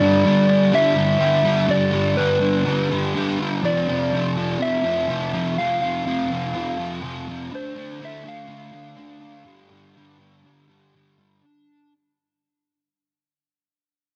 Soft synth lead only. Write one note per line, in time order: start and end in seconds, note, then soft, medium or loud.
0.00 0.76 D5 loud
0.75 1.72 E5 loud
1.71 2.19 D5 loud
2.17 3.39 B4 medium
3.65 4.64 D5 loud
4.62 5.60 E5 loud
5.58 5.81 F5 loud
5.82 6.05 F5 loud
6.06 7.24 F5 loud
7.55 8.06 C5 loud
8.05 8.30 E5 loud
8.28 10.95 F5 loud